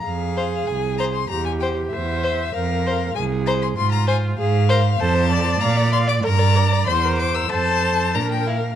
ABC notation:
X:1
M:2/4
L:1/16
Q:1/4=96
K:Fm
V:1 name="Violin"
f4 a2 b c' | b a g2 =e4 | f4 a2 b c' | c' b a2 f4 |
[K:F] a4 b2 c' d' | b4 c'2 d' e' | a4 b g f2 |]
V:2 name="Violin"
z2 c z3 c z | z2 c z3 c z | z2 c z3 c z | z2 c z3 c z |
[K:F] A c A c f d f d | B d B d c B c B | A4 D2 E2 |]
V:3 name="Viola"
A8 | G4 c4 | B4 A4 | F4 A2 B2 |
[K:F] c2 d6 | B2 d2 c4 | c4 B4 |]
V:4 name="Cello" clef=bass
F,,4 C,,4 | =E,,4 E,,4 | F,,4 C,,4 | A,,4 A,,4 |
[K:F] F,,4 B,,4 | G,,4 E,,4 | F,,4 B,,4 |]